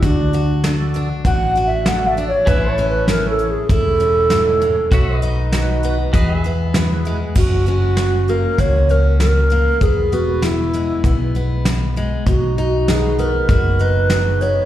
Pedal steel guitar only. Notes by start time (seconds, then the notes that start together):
2.46 G#4 B4 E5
2.66 A4
2.72 C#5
4.92 F#4 C#5 E5
5.14 D#5
5.19 B4
6.13 F#4 B4 D#5
6.35 G#4 E5